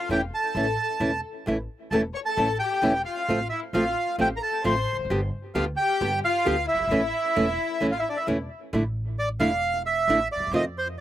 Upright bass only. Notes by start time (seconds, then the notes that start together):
0.09 E1
0.55 A1
1.00 E1
1.47 A1
1.91 E1
2.38 A1
2.83 E1
3.29 A1
3.73 A1
4.18 A1
4.65 A1
4.93 E1
4.99 F1
5.05 F#1
5.10 G1
5.55 D2
6.01 G1
6.46 D2
6.74 F#1
6.81 G1
6.87 G#1
6.92 A1
7.37 E1
7.82 A1
8.27 E1
8.73 A1
9.40 E1
10.08 A1
10.36 D2
10.40 D#2
10.47 E2
10.51 F2